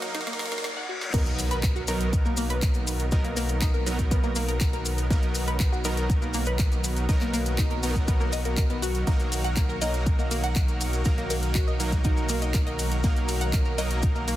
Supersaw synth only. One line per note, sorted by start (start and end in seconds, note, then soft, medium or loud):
0.00 0.64 F#3 medium
0.00 0.64 A#3 medium
0.00 0.64 D#4 medium
0.00 0.64 A#4 medium
1.14 1.85 F#3 medium
1.14 1.85 B3 medium
1.14 1.85 D#4 medium
1.14 1.85 A#4 loud
1.88 3.09 F#3 medium
1.88 3.09 B3 medium
1.88 3.09 D#4 medium
1.88 3.09 A#4 loud
3.12 3.84 F#3 medium
3.12 3.84 B3 medium
3.12 3.84 D#4 medium
3.12 3.84 A#4 loud
3.86 5.07 F#3 medium
3.86 5.07 B3 medium
3.86 5.07 D#4 medium
3.86 5.07 A#4 loud
5.10 5.82 F#3 medium
5.10 5.82 B3 medium
5.10 5.82 D#4 medium
5.10 5.82 A#4 loud
5.85 7.06 F#3 medium
5.85 7.06 B3 medium
5.85 7.06 D#4 medium
5.85 7.06 A#4 medium
7.09 7.80 F#3 medium
7.09 7.80 B3 medium
7.09 7.80 D#4 medium
7.09 7.80 A#4 loud
7.83 9.04 F#3 medium
7.83 9.04 B3 medium
7.83 9.04 D#4 medium
7.83 9.04 A#4 loud
9.07 9.79 F#3 medium
9.07 9.79 A#3 medium
9.07 9.79 D#4 medium
9.07 9.79 A#4 medium
9.82 11.03 F#3 medium
9.82 11.03 A#3 medium
9.82 11.03 D#4 medium
9.82 11.03 A#4 loud
11.06 11.77 F#3 medium
11.06 11.77 A#3 medium
11.06 11.77 D#4 medium
11.06 11.77 A#4 medium
11.80 13.01 F#3 medium
11.80 13.01 A#3 medium
11.80 13.01 D#4 medium
11.80 13.01 A#4 loud
13.04 13.75 F#3 medium
13.04 13.75 A#3 medium
13.04 13.75 D#4 medium
13.04 13.75 A#4 medium
13.78 14.36 F#3 medium
13.78 14.36 A#3 medium
13.78 14.36 D#4 medium
13.78 14.36 A#4 medium